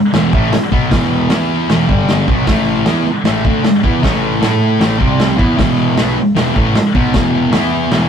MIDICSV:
0, 0, Header, 1, 6, 480
1, 0, Start_track
1, 0, Tempo, 389105
1, 1128, Time_signature, 4, 2, 24, 8
1, 9976, End_track
2, 0, Start_track
2, 0, Title_t, "Distorted electric guitar"
2, 0, Program_c, 0, 30
2, 159, Note_on_c, 0, 40, 89
2, 169, Note_on_c, 0, 47, 83
2, 174, Note_on_c, 0, 52, 95
2, 396, Note_off_c, 0, 40, 0
2, 401, Note_off_c, 0, 47, 0
2, 403, Note_off_c, 0, 52, 0
2, 414, Note_on_c, 0, 45, 80
2, 422, Note_on_c, 0, 52, 81
2, 423, Note_on_c, 0, 57, 89
2, 643, Note_off_c, 0, 45, 0
2, 647, Note_off_c, 0, 52, 0
2, 648, Note_off_c, 0, 57, 0
2, 882, Note_on_c, 0, 47, 91
2, 893, Note_on_c, 0, 54, 92
2, 896, Note_on_c, 0, 59, 100
2, 1110, Note_off_c, 0, 47, 0
2, 1119, Note_on_c, 0, 40, 81
2, 1123, Note_off_c, 0, 54, 0
2, 1124, Note_off_c, 0, 59, 0
2, 1124, Note_on_c, 0, 47, 100
2, 1137, Note_on_c, 0, 52, 92
2, 1584, Note_off_c, 0, 52, 0
2, 1594, Note_off_c, 0, 47, 0
2, 1596, Note_off_c, 0, 40, 0
2, 1599, Note_on_c, 0, 52, 93
2, 1607, Note_on_c, 0, 59, 88
2, 1610, Note_on_c, 0, 64, 108
2, 2077, Note_off_c, 0, 52, 0
2, 2081, Note_off_c, 0, 59, 0
2, 2082, Note_off_c, 0, 64, 0
2, 2084, Note_on_c, 0, 40, 92
2, 2096, Note_on_c, 0, 47, 93
2, 2098, Note_on_c, 0, 52, 90
2, 2319, Note_off_c, 0, 40, 0
2, 2323, Note_off_c, 0, 47, 0
2, 2326, Note_off_c, 0, 52, 0
2, 2326, Note_on_c, 0, 43, 88
2, 2328, Note_on_c, 0, 50, 92
2, 2338, Note_on_c, 0, 55, 97
2, 2800, Note_off_c, 0, 50, 0
2, 2801, Note_off_c, 0, 43, 0
2, 2805, Note_on_c, 0, 47, 97
2, 2807, Note_off_c, 0, 55, 0
2, 2813, Note_on_c, 0, 54, 100
2, 2815, Note_on_c, 0, 59, 100
2, 3033, Note_off_c, 0, 47, 0
2, 3038, Note_on_c, 0, 45, 88
2, 3043, Note_off_c, 0, 54, 0
2, 3045, Note_off_c, 0, 59, 0
2, 3047, Note_on_c, 0, 52, 98
2, 3053, Note_on_c, 0, 57, 100
2, 3517, Note_off_c, 0, 45, 0
2, 3522, Note_off_c, 0, 52, 0
2, 3525, Note_off_c, 0, 57, 0
2, 3536, Note_on_c, 0, 52, 91
2, 3539, Note_on_c, 0, 59, 93
2, 3541, Note_on_c, 0, 64, 105
2, 3766, Note_off_c, 0, 52, 0
2, 3768, Note_off_c, 0, 59, 0
2, 3769, Note_off_c, 0, 64, 0
2, 4004, Note_on_c, 0, 45, 94
2, 4013, Note_on_c, 0, 52, 93
2, 4018, Note_on_c, 0, 57, 99
2, 4240, Note_off_c, 0, 45, 0
2, 4245, Note_off_c, 0, 52, 0
2, 4247, Note_off_c, 0, 57, 0
2, 4257, Note_on_c, 0, 50, 92
2, 4263, Note_on_c, 0, 57, 90
2, 4269, Note_on_c, 0, 62, 90
2, 4487, Note_off_c, 0, 50, 0
2, 4490, Note_off_c, 0, 57, 0
2, 4493, Note_off_c, 0, 62, 0
2, 4721, Note_on_c, 0, 52, 85
2, 4731, Note_on_c, 0, 59, 98
2, 4743, Note_on_c, 0, 64, 90
2, 4959, Note_off_c, 0, 52, 0
2, 4964, Note_off_c, 0, 59, 0
2, 4970, Note_off_c, 0, 64, 0
2, 4974, Note_on_c, 0, 45, 93
2, 4980, Note_on_c, 0, 52, 102
2, 4987, Note_on_c, 0, 57, 108
2, 5419, Note_off_c, 0, 57, 0
2, 5429, Note_off_c, 0, 52, 0
2, 5434, Note_on_c, 0, 57, 87
2, 5440, Note_on_c, 0, 64, 96
2, 5445, Note_off_c, 0, 45, 0
2, 5450, Note_on_c, 0, 69, 92
2, 5916, Note_off_c, 0, 57, 0
2, 5916, Note_on_c, 0, 45, 85
2, 5918, Note_off_c, 0, 64, 0
2, 5924, Note_off_c, 0, 69, 0
2, 5931, Note_on_c, 0, 52, 101
2, 5933, Note_on_c, 0, 57, 93
2, 6145, Note_off_c, 0, 45, 0
2, 6150, Note_on_c, 0, 48, 78
2, 6154, Note_off_c, 0, 52, 0
2, 6159, Note_on_c, 0, 55, 93
2, 6161, Note_off_c, 0, 57, 0
2, 6166, Note_on_c, 0, 60, 100
2, 6619, Note_off_c, 0, 48, 0
2, 6623, Note_on_c, 0, 52, 91
2, 6629, Note_off_c, 0, 55, 0
2, 6634, Note_off_c, 0, 60, 0
2, 6634, Note_on_c, 0, 59, 84
2, 6639, Note_on_c, 0, 64, 88
2, 6865, Note_off_c, 0, 52, 0
2, 6868, Note_on_c, 0, 40, 85
2, 6874, Note_on_c, 0, 47, 97
2, 6875, Note_off_c, 0, 59, 0
2, 6878, Note_off_c, 0, 64, 0
2, 6880, Note_on_c, 0, 52, 92
2, 7337, Note_off_c, 0, 47, 0
2, 7351, Note_on_c, 0, 47, 84
2, 7352, Note_off_c, 0, 40, 0
2, 7356, Note_off_c, 0, 52, 0
2, 7361, Note_on_c, 0, 54, 91
2, 7372, Note_on_c, 0, 59, 97
2, 7594, Note_off_c, 0, 47, 0
2, 7599, Note_off_c, 0, 54, 0
2, 7604, Note_off_c, 0, 59, 0
2, 7836, Note_on_c, 0, 40, 81
2, 7844, Note_on_c, 0, 47, 80
2, 7848, Note_on_c, 0, 52, 95
2, 8074, Note_off_c, 0, 47, 0
2, 8074, Note_off_c, 0, 52, 0
2, 8076, Note_off_c, 0, 40, 0
2, 8079, Note_on_c, 0, 45, 90
2, 8089, Note_on_c, 0, 52, 94
2, 8096, Note_on_c, 0, 57, 94
2, 8318, Note_off_c, 0, 45, 0
2, 8323, Note_off_c, 0, 52, 0
2, 8326, Note_off_c, 0, 57, 0
2, 8569, Note_on_c, 0, 47, 93
2, 8576, Note_on_c, 0, 54, 88
2, 8588, Note_on_c, 0, 59, 94
2, 8792, Note_off_c, 0, 47, 0
2, 8794, Note_on_c, 0, 40, 86
2, 8806, Note_off_c, 0, 54, 0
2, 8807, Note_on_c, 0, 47, 96
2, 8812, Note_off_c, 0, 59, 0
2, 8813, Note_on_c, 0, 52, 102
2, 9260, Note_off_c, 0, 52, 0
2, 9270, Note_off_c, 0, 47, 0
2, 9275, Note_off_c, 0, 40, 0
2, 9275, Note_on_c, 0, 52, 78
2, 9284, Note_on_c, 0, 59, 89
2, 9293, Note_on_c, 0, 64, 108
2, 9755, Note_off_c, 0, 52, 0
2, 9760, Note_off_c, 0, 59, 0
2, 9764, Note_off_c, 0, 64, 0
2, 9768, Note_on_c, 0, 40, 93
2, 9774, Note_on_c, 0, 47, 91
2, 9778, Note_on_c, 0, 52, 100
2, 9976, Note_off_c, 0, 40, 0
2, 9976, Note_off_c, 0, 47, 0
2, 9976, Note_off_c, 0, 52, 0
2, 9976, End_track
3, 0, Start_track
3, 0, Title_t, "Picked electric bass"
3, 0, Program_c, 1, 34
3, 169, Note_on_c, 1, 28, 93
3, 391, Note_off_c, 1, 28, 0
3, 406, Note_on_c, 1, 33, 91
3, 630, Note_off_c, 1, 33, 0
3, 888, Note_on_c, 1, 35, 92
3, 1111, Note_off_c, 1, 35, 0
3, 1125, Note_on_c, 1, 28, 93
3, 1573, Note_off_c, 1, 28, 0
3, 1608, Note_on_c, 1, 40, 91
3, 2055, Note_off_c, 1, 40, 0
3, 2103, Note_on_c, 1, 28, 99
3, 2320, Note_off_c, 1, 28, 0
3, 2334, Note_on_c, 1, 31, 91
3, 2778, Note_off_c, 1, 31, 0
3, 2807, Note_on_c, 1, 35, 88
3, 3031, Note_off_c, 1, 35, 0
3, 3062, Note_on_c, 1, 33, 96
3, 3503, Note_off_c, 1, 33, 0
3, 3534, Note_on_c, 1, 40, 91
3, 3756, Note_off_c, 1, 40, 0
3, 3995, Note_on_c, 1, 33, 99
3, 4226, Note_off_c, 1, 33, 0
3, 4255, Note_on_c, 1, 38, 94
3, 4476, Note_off_c, 1, 38, 0
3, 4741, Note_on_c, 1, 40, 92
3, 4960, Note_off_c, 1, 40, 0
3, 4975, Note_on_c, 1, 33, 93
3, 5420, Note_off_c, 1, 33, 0
3, 5453, Note_on_c, 1, 45, 86
3, 5899, Note_off_c, 1, 45, 0
3, 5928, Note_on_c, 1, 33, 95
3, 6153, Note_off_c, 1, 33, 0
3, 6170, Note_on_c, 1, 36, 93
3, 6617, Note_off_c, 1, 36, 0
3, 6647, Note_on_c, 1, 40, 90
3, 6872, Note_off_c, 1, 40, 0
3, 6896, Note_on_c, 1, 28, 96
3, 7340, Note_off_c, 1, 28, 0
3, 7370, Note_on_c, 1, 35, 88
3, 7594, Note_off_c, 1, 35, 0
3, 7856, Note_on_c, 1, 28, 94
3, 8077, Note_off_c, 1, 28, 0
3, 8090, Note_on_c, 1, 33, 93
3, 8314, Note_off_c, 1, 33, 0
3, 8571, Note_on_c, 1, 35, 88
3, 8794, Note_off_c, 1, 35, 0
3, 8812, Note_on_c, 1, 28, 91
3, 9258, Note_off_c, 1, 28, 0
3, 9302, Note_on_c, 1, 40, 82
3, 9743, Note_off_c, 1, 40, 0
3, 9772, Note_on_c, 1, 28, 99
3, 9976, Note_off_c, 1, 28, 0
3, 9976, End_track
4, 0, Start_track
4, 0, Title_t, "Muted distorted electric guitar strokes"
4, 649, Note_on_c, 9, 29, 57
4, 773, Note_off_c, 9, 29, 0
4, 3771, Note_on_c, 9, 29, 61
4, 3894, Note_off_c, 9, 29, 0
4, 4496, Note_on_c, 9, 29, 58
4, 4619, Note_off_c, 9, 29, 0
4, 7608, Note_on_c, 9, 29, 58
4, 7731, Note_off_c, 9, 29, 0
4, 8325, Note_on_c, 9, 29, 61
4, 8449, Note_off_c, 9, 29, 0
4, 9976, End_track
5, 0, Start_track
5, 0, Title_t, "Muted picked electric bass strokes"
5, 640, Note_on_c, 9, 29, 41
5, 764, Note_off_c, 9, 29, 0
5, 3783, Note_on_c, 9, 29, 41
5, 3906, Note_off_c, 9, 29, 0
5, 4501, Note_on_c, 9, 29, 40
5, 4625, Note_off_c, 9, 29, 0
5, 7623, Note_on_c, 9, 29, 40
5, 7746, Note_off_c, 9, 29, 0
5, 8341, Note_on_c, 9, 29, 37
5, 8464, Note_off_c, 9, 29, 0
5, 9976, End_track
6, 0, Start_track
6, 0, Title_t, "Drums"
6, 167, Note_on_c, 9, 46, 49
6, 169, Note_on_c, 9, 38, 108
6, 290, Note_off_c, 9, 46, 0
6, 293, Note_off_c, 9, 38, 0
6, 409, Note_on_c, 9, 36, 107
6, 533, Note_off_c, 9, 36, 0
6, 649, Note_on_c, 9, 46, 54
6, 651, Note_on_c, 9, 38, 107
6, 772, Note_off_c, 9, 46, 0
6, 775, Note_off_c, 9, 38, 0
6, 889, Note_on_c, 9, 36, 100
6, 1012, Note_off_c, 9, 36, 0
6, 1127, Note_on_c, 9, 36, 108
6, 1129, Note_on_c, 9, 46, 59
6, 1132, Note_on_c, 9, 38, 101
6, 1251, Note_off_c, 9, 36, 0
6, 1253, Note_off_c, 9, 46, 0
6, 1255, Note_off_c, 9, 38, 0
6, 1603, Note_on_c, 9, 46, 62
6, 1606, Note_on_c, 9, 38, 112
6, 1727, Note_off_c, 9, 46, 0
6, 1729, Note_off_c, 9, 38, 0
6, 2092, Note_on_c, 9, 46, 52
6, 2095, Note_on_c, 9, 38, 109
6, 2216, Note_off_c, 9, 46, 0
6, 2218, Note_off_c, 9, 38, 0
6, 2332, Note_on_c, 9, 36, 104
6, 2455, Note_off_c, 9, 36, 0
6, 2573, Note_on_c, 9, 46, 55
6, 2576, Note_on_c, 9, 38, 102
6, 2696, Note_off_c, 9, 46, 0
6, 2699, Note_off_c, 9, 38, 0
6, 2813, Note_on_c, 9, 36, 105
6, 2936, Note_off_c, 9, 36, 0
6, 3048, Note_on_c, 9, 46, 56
6, 3051, Note_on_c, 9, 38, 111
6, 3053, Note_on_c, 9, 36, 107
6, 3171, Note_off_c, 9, 46, 0
6, 3174, Note_off_c, 9, 38, 0
6, 3177, Note_off_c, 9, 36, 0
6, 3527, Note_on_c, 9, 46, 57
6, 3529, Note_on_c, 9, 38, 115
6, 3650, Note_off_c, 9, 46, 0
6, 3653, Note_off_c, 9, 38, 0
6, 4010, Note_on_c, 9, 46, 52
6, 4013, Note_on_c, 9, 38, 109
6, 4133, Note_off_c, 9, 46, 0
6, 4136, Note_off_c, 9, 38, 0
6, 4253, Note_on_c, 9, 36, 109
6, 4376, Note_off_c, 9, 36, 0
6, 4494, Note_on_c, 9, 46, 51
6, 4497, Note_on_c, 9, 38, 97
6, 4618, Note_off_c, 9, 46, 0
6, 4620, Note_off_c, 9, 38, 0
6, 4735, Note_on_c, 9, 36, 112
6, 4859, Note_off_c, 9, 36, 0
6, 4976, Note_on_c, 9, 36, 102
6, 4983, Note_on_c, 9, 46, 52
6, 4985, Note_on_c, 9, 38, 106
6, 5099, Note_off_c, 9, 36, 0
6, 5106, Note_off_c, 9, 46, 0
6, 5108, Note_off_c, 9, 38, 0
6, 5459, Note_on_c, 9, 46, 62
6, 5462, Note_on_c, 9, 38, 111
6, 5583, Note_off_c, 9, 46, 0
6, 5585, Note_off_c, 9, 38, 0
6, 5934, Note_on_c, 9, 46, 55
6, 5937, Note_on_c, 9, 38, 102
6, 6058, Note_off_c, 9, 46, 0
6, 6060, Note_off_c, 9, 38, 0
6, 6175, Note_on_c, 9, 36, 102
6, 6299, Note_off_c, 9, 36, 0
6, 6410, Note_on_c, 9, 46, 53
6, 6413, Note_on_c, 9, 38, 104
6, 6534, Note_off_c, 9, 46, 0
6, 6536, Note_off_c, 9, 38, 0
6, 6653, Note_on_c, 9, 36, 104
6, 6776, Note_off_c, 9, 36, 0
6, 6891, Note_on_c, 9, 36, 105
6, 6895, Note_on_c, 9, 46, 51
6, 6897, Note_on_c, 9, 38, 105
6, 7014, Note_off_c, 9, 36, 0
6, 7018, Note_off_c, 9, 46, 0
6, 7020, Note_off_c, 9, 38, 0
6, 7370, Note_on_c, 9, 46, 57
6, 7373, Note_on_c, 9, 38, 114
6, 7494, Note_off_c, 9, 46, 0
6, 7496, Note_off_c, 9, 38, 0
6, 7852, Note_on_c, 9, 46, 48
6, 7854, Note_on_c, 9, 38, 100
6, 7975, Note_off_c, 9, 46, 0
6, 7977, Note_off_c, 9, 38, 0
6, 8094, Note_on_c, 9, 36, 106
6, 8217, Note_off_c, 9, 36, 0
6, 8331, Note_on_c, 9, 46, 52
6, 8333, Note_on_c, 9, 38, 107
6, 8454, Note_off_c, 9, 46, 0
6, 8457, Note_off_c, 9, 38, 0
6, 8572, Note_on_c, 9, 36, 98
6, 8696, Note_off_c, 9, 36, 0
6, 8808, Note_on_c, 9, 46, 56
6, 8810, Note_on_c, 9, 38, 110
6, 8811, Note_on_c, 9, 36, 106
6, 8931, Note_off_c, 9, 46, 0
6, 8933, Note_off_c, 9, 38, 0
6, 8934, Note_off_c, 9, 36, 0
6, 9284, Note_on_c, 9, 46, 62
6, 9287, Note_on_c, 9, 38, 121
6, 9408, Note_off_c, 9, 46, 0
6, 9410, Note_off_c, 9, 38, 0
6, 9765, Note_on_c, 9, 46, 57
6, 9767, Note_on_c, 9, 38, 105
6, 9888, Note_off_c, 9, 46, 0
6, 9890, Note_off_c, 9, 38, 0
6, 9976, End_track
0, 0, End_of_file